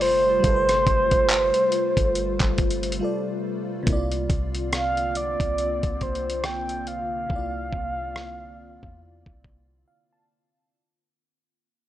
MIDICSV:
0, 0, Header, 1, 6, 480
1, 0, Start_track
1, 0, Tempo, 857143
1, 246, Time_signature, 4, 2, 24, 8
1, 6657, End_track
2, 0, Start_track
2, 0, Title_t, "Soft synth lead"
2, 0, Program_c, 0, 80
2, 10, Note_on_c, 0, 72, 104
2, 1906, Note_off_c, 0, 72, 0
2, 2652, Note_on_c, 0, 77, 99
2, 2893, Note_on_c, 0, 74, 105
2, 2901, Note_off_c, 0, 77, 0
2, 3375, Note_on_c, 0, 72, 91
2, 3383, Note_off_c, 0, 74, 0
2, 3611, Note_on_c, 0, 79, 107
2, 3620, Note_off_c, 0, 72, 0
2, 3851, Note_on_c, 0, 77, 116
2, 3859, Note_off_c, 0, 79, 0
2, 5528, Note_off_c, 0, 77, 0
2, 6657, End_track
3, 0, Start_track
3, 0, Title_t, "FM electric piano"
3, 0, Program_c, 1, 5
3, 0, Control_c, 1, 64, 127
3, 0, Note_on_c, 1, 55, 69
3, 0, Note_on_c, 1, 65, 62
3, 0, Note_on_c, 1, 69, 61
3, 0, Note_on_c, 1, 72, 76
3, 212, Note_off_c, 1, 55, 0
3, 221, Note_off_c, 1, 65, 0
3, 222, Note_on_c, 1, 55, 67
3, 230, Note_off_c, 1, 69, 0
3, 240, Note_on_c, 1, 65, 62
3, 258, Note_off_c, 1, 72, 0
3, 260, Note_on_c, 1, 69, 60
3, 277, Note_on_c, 1, 71, 60
3, 304, Note_off_c, 1, 71, 0
3, 315, Note_on_c, 1, 72, 75
3, 1652, Note_off_c, 1, 55, 0
3, 1661, Note_off_c, 1, 65, 0
3, 1670, Note_off_c, 1, 69, 0
3, 1677, Note_on_c, 1, 55, 60
3, 1686, Note_on_c, 1, 65, 53
3, 1695, Note_on_c, 1, 69, 54
3, 1698, Note_off_c, 1, 72, 0
3, 1705, Note_on_c, 1, 74, 63
3, 2144, Note_on_c, 1, 48, 76
3, 2161, Note_off_c, 1, 55, 0
3, 2162, Note_on_c, 1, 58, 69
3, 2166, Note_off_c, 1, 65, 0
3, 2171, Note_off_c, 1, 69, 0
3, 2173, Control_c, 1, 64, 0
3, 2175, Note_off_c, 1, 74, 0
3, 2180, Note_on_c, 1, 64, 55
3, 2199, Note_on_c, 1, 74, 79
3, 2216, Note_off_c, 1, 64, 0
3, 2217, Note_on_c, 1, 65, 71
3, 2271, Control_c, 1, 64, 127
3, 4053, Note_off_c, 1, 48, 0
3, 4062, Note_off_c, 1, 58, 0
3, 4065, Note_on_c, 1, 48, 65
3, 4080, Note_off_c, 1, 74, 0
3, 4083, Note_on_c, 1, 58, 59
3, 4089, Note_off_c, 1, 65, 0
3, 4102, Note_on_c, 1, 64, 47
3, 4119, Note_on_c, 1, 74, 69
3, 4136, Note_off_c, 1, 64, 0
3, 4138, Note_on_c, 1, 65, 60
3, 5531, Note_on_c, 1, 77, 68
3, 5658, Note_off_c, 1, 77, 0
3, 5670, Note_on_c, 1, 81, 68
3, 5973, Note_off_c, 1, 48, 0
3, 5982, Note_off_c, 1, 58, 0
3, 5986, Note_off_c, 1, 81, 0
3, 6000, Note_off_c, 1, 74, 0
3, 6010, Note_off_c, 1, 65, 0
3, 6013, Control_c, 1, 64, 0
3, 6657, End_track
4, 0, Start_track
4, 0, Title_t, "Ambient pad"
4, 0, Program_c, 2, 92
4, 0, Note_on_c, 2, 48, 81
4, 0, Note_on_c, 2, 55, 78
4, 0, Note_on_c, 2, 57, 76
4, 0, Note_on_c, 2, 65, 97
4, 2143, Note_off_c, 2, 55, 0
4, 2144, Note_off_c, 2, 48, 0
4, 2144, Note_off_c, 2, 57, 0
4, 2144, Note_off_c, 2, 65, 0
4, 2166, Note_on_c, 2, 58, 74
4, 2166, Note_on_c, 2, 60, 77
4, 2166, Note_on_c, 2, 65, 88
4, 2168, Note_on_c, 2, 50, 80
4, 5984, Note_off_c, 2, 58, 0
4, 5984, Note_off_c, 2, 60, 0
4, 5984, Note_off_c, 2, 65, 0
4, 5985, Note_off_c, 2, 50, 0
4, 6657, End_track
5, 0, Start_track
5, 0, Title_t, "808-style bass"
5, 0, Program_c, 3, 38
5, 0, Note_on_c, 3, 31, 102
5, 225, Note_off_c, 3, 31, 0
5, 247, Note_on_c, 3, 31, 114
5, 477, Note_off_c, 3, 31, 0
5, 485, Note_on_c, 3, 31, 107
5, 850, Note_off_c, 3, 31, 0
5, 1103, Note_on_c, 3, 31, 98
5, 1335, Note_off_c, 3, 31, 0
5, 1347, Note_on_c, 3, 31, 109
5, 1687, Note_off_c, 3, 31, 0
5, 2167, Note_on_c, 3, 36, 107
5, 2397, Note_off_c, 3, 36, 0
5, 2407, Note_on_c, 3, 36, 97
5, 3003, Note_off_c, 3, 36, 0
5, 3024, Note_on_c, 3, 36, 94
5, 3255, Note_off_c, 3, 36, 0
5, 3267, Note_on_c, 3, 36, 94
5, 4065, Note_off_c, 3, 36, 0
5, 4088, Note_on_c, 3, 36, 110
5, 4318, Note_off_c, 3, 36, 0
5, 4327, Note_on_c, 3, 36, 99
5, 4923, Note_off_c, 3, 36, 0
5, 4945, Note_on_c, 3, 40, 92
5, 5175, Note_off_c, 3, 40, 0
5, 5188, Note_on_c, 3, 36, 97
5, 5514, Note_off_c, 3, 36, 0
5, 6657, End_track
6, 0, Start_track
6, 0, Title_t, "Drums"
6, 6, Note_on_c, 9, 46, 67
6, 62, Note_off_c, 9, 46, 0
6, 246, Note_on_c, 9, 42, 72
6, 247, Note_on_c, 9, 36, 123
6, 302, Note_off_c, 9, 42, 0
6, 303, Note_off_c, 9, 36, 0
6, 385, Note_on_c, 9, 42, 62
6, 388, Note_on_c, 9, 37, 68
6, 441, Note_off_c, 9, 42, 0
6, 444, Note_off_c, 9, 37, 0
6, 485, Note_on_c, 9, 36, 109
6, 485, Note_on_c, 9, 42, 61
6, 541, Note_off_c, 9, 36, 0
6, 541, Note_off_c, 9, 42, 0
6, 623, Note_on_c, 9, 42, 53
6, 625, Note_on_c, 9, 36, 96
6, 679, Note_off_c, 9, 42, 0
6, 681, Note_off_c, 9, 36, 0
6, 724, Note_on_c, 9, 42, 81
6, 726, Note_on_c, 9, 39, 117
6, 780, Note_off_c, 9, 42, 0
6, 782, Note_off_c, 9, 39, 0
6, 862, Note_on_c, 9, 42, 50
6, 918, Note_off_c, 9, 42, 0
6, 963, Note_on_c, 9, 42, 76
6, 1019, Note_off_c, 9, 42, 0
6, 1103, Note_on_c, 9, 36, 97
6, 1104, Note_on_c, 9, 42, 58
6, 1159, Note_off_c, 9, 36, 0
6, 1160, Note_off_c, 9, 42, 0
6, 1206, Note_on_c, 9, 42, 66
6, 1262, Note_off_c, 9, 42, 0
6, 1345, Note_on_c, 9, 42, 52
6, 1346, Note_on_c, 9, 36, 95
6, 1347, Note_on_c, 9, 39, 62
6, 1401, Note_off_c, 9, 42, 0
6, 1402, Note_off_c, 9, 36, 0
6, 1403, Note_off_c, 9, 39, 0
6, 1444, Note_on_c, 9, 42, 57
6, 1447, Note_on_c, 9, 36, 84
6, 1500, Note_off_c, 9, 42, 0
6, 1503, Note_off_c, 9, 36, 0
6, 1515, Note_on_c, 9, 42, 56
6, 1571, Note_off_c, 9, 42, 0
6, 1585, Note_on_c, 9, 42, 60
6, 1636, Note_off_c, 9, 42, 0
6, 1636, Note_on_c, 9, 42, 58
6, 1692, Note_off_c, 9, 42, 0
6, 2166, Note_on_c, 9, 42, 68
6, 2167, Note_on_c, 9, 36, 122
6, 2222, Note_off_c, 9, 42, 0
6, 2223, Note_off_c, 9, 36, 0
6, 2305, Note_on_c, 9, 42, 56
6, 2361, Note_off_c, 9, 42, 0
6, 2406, Note_on_c, 9, 36, 101
6, 2406, Note_on_c, 9, 42, 57
6, 2462, Note_off_c, 9, 36, 0
6, 2462, Note_off_c, 9, 42, 0
6, 2545, Note_on_c, 9, 42, 49
6, 2601, Note_off_c, 9, 42, 0
6, 2646, Note_on_c, 9, 42, 77
6, 2648, Note_on_c, 9, 37, 116
6, 2702, Note_off_c, 9, 42, 0
6, 2704, Note_off_c, 9, 37, 0
6, 2785, Note_on_c, 9, 42, 46
6, 2841, Note_off_c, 9, 42, 0
6, 2886, Note_on_c, 9, 42, 69
6, 2942, Note_off_c, 9, 42, 0
6, 3024, Note_on_c, 9, 36, 90
6, 3026, Note_on_c, 9, 42, 53
6, 3080, Note_off_c, 9, 36, 0
6, 3082, Note_off_c, 9, 42, 0
6, 3126, Note_on_c, 9, 42, 63
6, 3182, Note_off_c, 9, 42, 0
6, 3266, Note_on_c, 9, 36, 90
6, 3266, Note_on_c, 9, 42, 49
6, 3322, Note_off_c, 9, 36, 0
6, 3322, Note_off_c, 9, 42, 0
6, 3365, Note_on_c, 9, 42, 38
6, 3368, Note_on_c, 9, 36, 80
6, 3421, Note_off_c, 9, 42, 0
6, 3424, Note_off_c, 9, 36, 0
6, 3445, Note_on_c, 9, 42, 51
6, 3501, Note_off_c, 9, 42, 0
6, 3526, Note_on_c, 9, 42, 67
6, 3582, Note_off_c, 9, 42, 0
6, 3605, Note_on_c, 9, 37, 108
6, 3605, Note_on_c, 9, 42, 63
6, 3661, Note_off_c, 9, 37, 0
6, 3661, Note_off_c, 9, 42, 0
6, 3747, Note_on_c, 9, 42, 51
6, 3803, Note_off_c, 9, 42, 0
6, 3846, Note_on_c, 9, 42, 64
6, 3902, Note_off_c, 9, 42, 0
6, 4087, Note_on_c, 9, 36, 114
6, 4143, Note_off_c, 9, 36, 0
6, 4326, Note_on_c, 9, 36, 95
6, 4382, Note_off_c, 9, 36, 0
6, 4569, Note_on_c, 9, 37, 109
6, 4625, Note_off_c, 9, 37, 0
6, 4944, Note_on_c, 9, 36, 90
6, 5000, Note_off_c, 9, 36, 0
6, 5187, Note_on_c, 9, 36, 85
6, 5243, Note_off_c, 9, 36, 0
6, 5289, Note_on_c, 9, 36, 79
6, 5345, Note_off_c, 9, 36, 0
6, 6657, End_track
0, 0, End_of_file